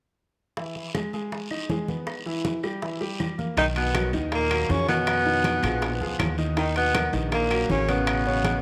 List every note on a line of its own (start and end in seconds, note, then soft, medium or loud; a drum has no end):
0.57 0.88 E3 medium
0.57 0.88 E4 medium
0.57 high bongo medium
0.57 high conga soft
0.57 long guiro medium
0.76 high bongo soft
0.76 high conga soft
0.94 1.10 G#3 medium
0.94 1.10 G#4 medium
0.94 high bongo soft
0.94 high conga medium
0.94 short guiro medium
0.94 claves medium
1.13 1.44 G#3 medium
1.13 1.44 G#4 medium
1.13 high bongo soft
1.13 high conga soft
1.13 short guiro medium
1.32 high bongo medium
1.32 high conga soft
1.32 long guiro medium
1.51 1.66 D#4 medium
1.51 1.66 D#5 medium
1.51 high bongo soft
1.51 high conga soft
1.51 claves medium
1.69 1.85 G#3 medium
1.69 1.85 G#4 medium
1.69 high bongo soft
1.69 low bongo medium
1.69 high conga medium
1.69 short guiro medium
1.88 2.19 B3 medium
1.88 2.19 B4 medium
1.88 high conga medium
1.88 short guiro medium
2.07 high bongo medium
2.07 high conga soft
2.07 long guiro medium
2.07 claves medium
2.26 2.57 E3 medium
2.26 2.57 E4 medium
2.26 high bongo soft
2.26 high conga soft
2.45 high bongo medium
2.45 high conga medium
2.45 short guiro medium
2.63 2.79 G3 medium
2.63 2.79 G4 medium
2.63 high bongo soft
2.63 high conga soft
2.63 short guiro medium
2.63 claves medium
2.82 2.98 E3 medium
2.82 2.98 E4 medium
2.82 high bongo medium
2.82 high conga soft
2.82 long guiro medium
3.00 3.31 G3 medium
3.00 3.32 G4 medium
3.00 high bongo soft
3.00 high conga soft
3.20 high bongo soft
3.20 low bongo medium
3.20 high conga medium
3.20 short guiro medium
3.20 claves medium
3.38 3.54 A#3 medium
3.38 3.54 A#4 medium
3.38 high conga medium
3.38 short guiro medium
3.57 4.09 B1 medium
3.57 3.88 D#3 medium
3.57 3.66 D#3 medium
3.57 3.66 D#4 loud
3.57 3.89 D#4 medium
3.57 3.89 D#5 medium
3.57 high bongo medium
3.57 high conga soft
3.57 high timbale medium
3.57 long guiro medium
3.76 4.11 B2 medium
3.76 4.11 B3 medium
3.76 high bongo soft
3.76 high conga soft
3.76 high timbale medium
3.95 4.10 F#3 medium
3.95 4.10 F#4 medium
3.95 4.11 A#4 medium
3.95 high bongo medium
3.95 high conga medium
3.95 high timbale medium
3.95 claves medium
4.13 4.66 D#2 loud
4.13 4.44 D#3 medium
4.13 4.44 D#4 medium
4.13 4.45 D#5 medium
4.13 high bongo soft
4.13 high conga soft
4.13 short guiro medium
4.32 4.72 A#2 medium
4.32 4.72 A#3 medium
4.32 high bongo medium
4.32 high conga soft
4.32 high timbale medium
4.32 long guiro medium
4.51 4.82 F#3 medium
4.51 4.82 F#4 medium
4.51 4.82 A#4 medium
4.51 high bongo soft
4.51 high conga soft
4.51 high timbale medium
4.51 claves medium
4.69 5.57 F2 medium
4.69 4.88 C#3 medium
4.69 4.88 C#4 loud
4.69 high bongo soft
4.69 low bongo medium
4.69 high conga medium
4.69 short guiro medium
4.88 6.35 B2 loud
4.88 5.19 D#3 medium
4.88 6.35 B3 loud
4.88 5.19 D#4 medium
4.88 5.19 D#5 medium
4.88 high conga medium
4.88 high timbale medium
4.88 short guiro medium
5.07 high bongo medium
5.07 high conga soft
5.07 high timbale medium
5.07 long guiro medium
5.07 claves medium
5.26 5.57 D#3 medium
5.26 5.57 D#4 medium
5.26 5.57 D#5 medium
5.26 high bongo soft
5.26 high conga soft
5.44 high bongo medium
5.44 high conga loud
5.44 high timbale medium
5.44 short guiro medium
5.63 5.98 A#1 loud
5.63 5.94 F3 medium
5.63 5.94 F4 medium
5.63 5.94 G#4 medium
5.63 high bongo soft
5.63 high conga soft
5.63 high timbale medium
5.63 short guiro medium
5.63 claves medium
5.82 high bongo medium
5.82 high conga soft
5.82 high timbale medium
5.82 long guiro medium
6.01 6.18 D2 medium
6.01 6.32 F3 medium
6.01 6.32 F4 medium
6.01 6.32 G#4 medium
6.01 high bongo soft
6.01 high conga soft
6.19 7.07 D#2 medium
6.19 high bongo soft
6.19 low bongo medium
6.19 high conga medium
6.19 high timbale medium
6.19 low timbale medium
6.19 short guiro medium
6.19 claves medium
6.38 6.54 D#3 medium
6.38 6.54 D#4 medium
6.38 6.54 D#5 medium
6.38 short guiro medium
6.57 6.88 D#3 medium
6.57 6.75 D#3 medium
6.57 6.88 D#4 medium
6.57 6.75 D#4 medium
6.57 6.88 D#5 medium
6.57 high bongo medium
6.57 high conga soft
6.57 high timbale medium
6.57 long guiro medium
6.76 7.11 B2 medium
6.76 7.11 B3 medium
6.76 high bongo soft
6.76 high conga soft
6.76 high timbale medium
6.95 7.10 F#3 medium
6.95 7.10 F#4 medium
6.95 7.10 A#4 medium
6.95 high bongo medium
6.95 high conga medium
6.95 high timbale loud
6.95 claves medium
7.13 7.65 A#1 loud
7.13 7.44 D#3 medium
7.13 7.44 D#4 medium
7.13 7.44 D#5 medium
7.13 high bongo soft
7.13 high conga soft
7.13 short guiro medium
7.32 7.67 A#2 medium
7.32 7.68 A#3 medium
7.32 high bongo medium
7.32 high conga soft
7.32 high timbale medium
7.32 long guiro medium
7.50 7.81 F#3 medium
7.50 7.81 F#4 medium
7.50 7.82 A#4 medium
7.50 high bongo soft
7.50 high conga soft
7.50 high timbale medium
7.50 claves medium
7.69 8.57 A1 medium
7.69 7.91 C#3 medium
7.69 7.91 C#4 medium
7.69 high bongo soft
7.69 low bongo medium
7.69 high conga medium
7.69 short guiro medium
7.88 8.62 B2 medium
7.88 8.19 C#3 medium
7.88 8.62 B3 medium
7.88 8.19 C#4 medium
7.88 8.20 C#5 medium
7.88 high conga medium
7.88 high timbale medium
7.88 short guiro medium
8.07 high bongo medium
8.07 high conga soft
8.07 high timbale medium
8.07 long guiro medium
8.07 claves medium
8.26 8.57 C#3 medium
8.26 8.57 C#4 medium
8.26 8.57 C#5 medium
8.26 high bongo soft
8.26 high conga soft
8.44 high bongo medium
8.44 high conga medium
8.44 high timbale medium
8.44 short guiro medium